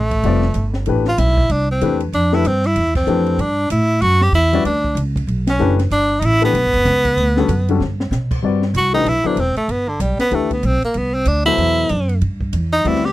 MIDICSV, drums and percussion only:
0, 0, Header, 1, 2, 480
1, 0, Start_track
1, 0, Tempo, 315457
1, 1315, Time_signature, 4, 2, 24, 8
1, 19973, End_track
2, 0, Start_track
2, 0, Title_t, "Drums"
2, 170, Note_on_c, 9, 36, 53
2, 170, Note_on_c, 9, 51, 46
2, 322, Note_off_c, 9, 36, 0
2, 322, Note_off_c, 9, 51, 0
2, 357, Note_on_c, 9, 51, 56
2, 509, Note_off_c, 9, 51, 0
2, 641, Note_on_c, 9, 38, 29
2, 793, Note_off_c, 9, 38, 0
2, 820, Note_on_c, 9, 44, 54
2, 820, Note_on_c, 9, 51, 53
2, 972, Note_off_c, 9, 44, 0
2, 972, Note_off_c, 9, 51, 0
2, 1119, Note_on_c, 9, 38, 42
2, 1271, Note_off_c, 9, 38, 0
2, 1303, Note_on_c, 9, 51, 60
2, 1455, Note_off_c, 9, 51, 0
2, 1598, Note_on_c, 9, 38, 39
2, 1750, Note_off_c, 9, 38, 0
2, 1794, Note_on_c, 9, 38, 37
2, 1797, Note_on_c, 9, 44, 70
2, 1797, Note_on_c, 9, 51, 73
2, 1946, Note_off_c, 9, 38, 0
2, 1949, Note_off_c, 9, 44, 0
2, 1949, Note_off_c, 9, 51, 0
2, 2091, Note_on_c, 9, 36, 57
2, 2244, Note_off_c, 9, 36, 0
2, 2275, Note_on_c, 9, 51, 62
2, 2427, Note_off_c, 9, 51, 0
2, 2759, Note_on_c, 9, 44, 51
2, 2759, Note_on_c, 9, 51, 57
2, 2911, Note_off_c, 9, 44, 0
2, 2911, Note_off_c, 9, 51, 0
2, 3048, Note_on_c, 9, 51, 45
2, 3200, Note_off_c, 9, 51, 0
2, 3245, Note_on_c, 9, 51, 58
2, 3397, Note_off_c, 9, 51, 0
2, 3538, Note_on_c, 9, 38, 42
2, 3690, Note_off_c, 9, 38, 0
2, 3723, Note_on_c, 9, 44, 57
2, 3723, Note_on_c, 9, 51, 69
2, 3876, Note_off_c, 9, 44, 0
2, 3876, Note_off_c, 9, 51, 0
2, 4018, Note_on_c, 9, 51, 49
2, 4170, Note_off_c, 9, 51, 0
2, 4195, Note_on_c, 9, 51, 67
2, 4347, Note_off_c, 9, 51, 0
2, 4490, Note_on_c, 9, 49, 66
2, 4493, Note_on_c, 9, 36, 74
2, 4642, Note_off_c, 9, 49, 0
2, 4645, Note_off_c, 9, 36, 0
2, 4664, Note_on_c, 9, 44, 47
2, 4816, Note_off_c, 9, 44, 0
2, 4967, Note_on_c, 9, 51, 40
2, 5119, Note_off_c, 9, 51, 0
2, 5157, Note_on_c, 9, 51, 64
2, 5310, Note_off_c, 9, 51, 0
2, 5630, Note_on_c, 9, 44, 66
2, 5630, Note_on_c, 9, 51, 68
2, 5782, Note_off_c, 9, 44, 0
2, 5782, Note_off_c, 9, 51, 0
2, 6112, Note_on_c, 9, 51, 54
2, 6264, Note_off_c, 9, 51, 0
2, 6409, Note_on_c, 9, 38, 45
2, 6561, Note_off_c, 9, 38, 0
2, 6603, Note_on_c, 9, 44, 40
2, 6603, Note_on_c, 9, 51, 60
2, 6756, Note_off_c, 9, 44, 0
2, 6756, Note_off_c, 9, 51, 0
2, 6895, Note_on_c, 9, 51, 43
2, 7047, Note_off_c, 9, 51, 0
2, 7076, Note_on_c, 9, 51, 61
2, 7229, Note_off_c, 9, 51, 0
2, 7368, Note_on_c, 9, 36, 48
2, 7520, Note_off_c, 9, 36, 0
2, 7559, Note_on_c, 9, 44, 52
2, 7559, Note_on_c, 9, 51, 72
2, 7712, Note_off_c, 9, 44, 0
2, 7712, Note_off_c, 9, 51, 0
2, 7849, Note_on_c, 9, 36, 65
2, 7865, Note_on_c, 9, 51, 47
2, 8001, Note_off_c, 9, 36, 0
2, 8017, Note_off_c, 9, 51, 0
2, 8040, Note_on_c, 9, 51, 58
2, 8192, Note_off_c, 9, 51, 0
2, 8325, Note_on_c, 9, 38, 68
2, 8328, Note_on_c, 9, 51, 60
2, 8478, Note_off_c, 9, 38, 0
2, 8481, Note_off_c, 9, 51, 0
2, 8523, Note_on_c, 9, 44, 43
2, 8675, Note_off_c, 9, 44, 0
2, 8812, Note_on_c, 9, 38, 39
2, 8815, Note_on_c, 9, 51, 49
2, 8964, Note_off_c, 9, 38, 0
2, 8967, Note_off_c, 9, 51, 0
2, 8996, Note_on_c, 9, 51, 61
2, 9148, Note_off_c, 9, 51, 0
2, 9467, Note_on_c, 9, 44, 64
2, 9467, Note_on_c, 9, 51, 84
2, 9619, Note_off_c, 9, 44, 0
2, 9619, Note_off_c, 9, 51, 0
2, 9767, Note_on_c, 9, 51, 49
2, 9919, Note_off_c, 9, 51, 0
2, 9961, Note_on_c, 9, 51, 61
2, 10113, Note_off_c, 9, 51, 0
2, 10245, Note_on_c, 9, 36, 49
2, 10251, Note_on_c, 9, 51, 41
2, 10397, Note_off_c, 9, 36, 0
2, 10403, Note_off_c, 9, 51, 0
2, 10426, Note_on_c, 9, 38, 36
2, 10429, Note_on_c, 9, 44, 45
2, 10429, Note_on_c, 9, 51, 51
2, 10578, Note_off_c, 9, 38, 0
2, 10581, Note_off_c, 9, 44, 0
2, 10581, Note_off_c, 9, 51, 0
2, 10725, Note_on_c, 9, 51, 45
2, 10726, Note_on_c, 9, 36, 53
2, 10877, Note_off_c, 9, 51, 0
2, 10878, Note_off_c, 9, 36, 0
2, 10919, Note_on_c, 9, 51, 64
2, 11071, Note_off_c, 9, 51, 0
2, 11210, Note_on_c, 9, 38, 47
2, 11362, Note_off_c, 9, 38, 0
2, 11392, Note_on_c, 9, 44, 54
2, 11392, Note_on_c, 9, 51, 74
2, 11544, Note_off_c, 9, 44, 0
2, 11544, Note_off_c, 9, 51, 0
2, 11693, Note_on_c, 9, 51, 51
2, 11845, Note_off_c, 9, 51, 0
2, 11882, Note_on_c, 9, 38, 42
2, 12035, Note_off_c, 9, 38, 0
2, 12177, Note_on_c, 9, 38, 60
2, 12329, Note_off_c, 9, 38, 0
2, 12352, Note_on_c, 9, 38, 48
2, 12355, Note_on_c, 9, 44, 53
2, 12505, Note_off_c, 9, 38, 0
2, 12508, Note_off_c, 9, 44, 0
2, 12643, Note_on_c, 9, 36, 70
2, 12647, Note_on_c, 9, 49, 70
2, 12795, Note_off_c, 9, 36, 0
2, 12799, Note_off_c, 9, 49, 0
2, 13120, Note_on_c, 9, 38, 37
2, 13272, Note_off_c, 9, 38, 0
2, 13306, Note_on_c, 9, 44, 56
2, 13306, Note_on_c, 9, 51, 65
2, 13458, Note_off_c, 9, 44, 0
2, 13458, Note_off_c, 9, 51, 0
2, 13791, Note_on_c, 9, 51, 57
2, 13943, Note_off_c, 9, 51, 0
2, 14255, Note_on_c, 9, 44, 43
2, 14255, Note_on_c, 9, 51, 52
2, 14407, Note_off_c, 9, 44, 0
2, 14407, Note_off_c, 9, 51, 0
2, 14551, Note_on_c, 9, 51, 37
2, 14703, Note_off_c, 9, 51, 0
2, 14742, Note_on_c, 9, 51, 55
2, 14894, Note_off_c, 9, 51, 0
2, 15216, Note_on_c, 9, 44, 55
2, 15216, Note_on_c, 9, 51, 67
2, 15368, Note_off_c, 9, 44, 0
2, 15368, Note_off_c, 9, 51, 0
2, 15510, Note_on_c, 9, 38, 54
2, 15513, Note_on_c, 9, 51, 47
2, 15662, Note_off_c, 9, 38, 0
2, 15665, Note_off_c, 9, 51, 0
2, 15693, Note_on_c, 9, 51, 53
2, 15845, Note_off_c, 9, 51, 0
2, 15986, Note_on_c, 9, 51, 39
2, 15987, Note_on_c, 9, 36, 43
2, 16139, Note_off_c, 9, 51, 0
2, 16140, Note_off_c, 9, 36, 0
2, 16174, Note_on_c, 9, 44, 49
2, 16174, Note_on_c, 9, 51, 58
2, 16326, Note_off_c, 9, 44, 0
2, 16326, Note_off_c, 9, 51, 0
2, 16467, Note_on_c, 9, 51, 43
2, 16619, Note_off_c, 9, 51, 0
2, 16646, Note_on_c, 9, 51, 57
2, 16798, Note_off_c, 9, 51, 0
2, 17123, Note_on_c, 9, 44, 51
2, 17123, Note_on_c, 9, 51, 67
2, 17276, Note_off_c, 9, 44, 0
2, 17276, Note_off_c, 9, 51, 0
2, 17427, Note_on_c, 9, 51, 50
2, 17579, Note_off_c, 9, 51, 0
2, 17621, Note_on_c, 9, 51, 55
2, 17773, Note_off_c, 9, 51, 0
2, 18094, Note_on_c, 9, 44, 50
2, 18094, Note_on_c, 9, 51, 56
2, 18246, Note_off_c, 9, 44, 0
2, 18246, Note_off_c, 9, 51, 0
2, 18398, Note_on_c, 9, 51, 45
2, 18550, Note_off_c, 9, 51, 0
2, 18585, Note_on_c, 9, 51, 52
2, 18737, Note_off_c, 9, 51, 0
2, 18877, Note_on_c, 9, 36, 46
2, 19029, Note_off_c, 9, 36, 0
2, 19062, Note_on_c, 9, 44, 60
2, 19062, Note_on_c, 9, 51, 71
2, 19214, Note_off_c, 9, 44, 0
2, 19214, Note_off_c, 9, 51, 0
2, 19377, Note_on_c, 9, 51, 45
2, 19529, Note_off_c, 9, 51, 0
2, 19555, Note_on_c, 9, 51, 54
2, 19707, Note_off_c, 9, 51, 0
2, 19712, Note_on_c, 9, 38, 28
2, 19864, Note_off_c, 9, 38, 0
2, 19867, Note_on_c, 9, 38, 36
2, 19973, Note_off_c, 9, 38, 0
2, 19973, End_track
0, 0, End_of_file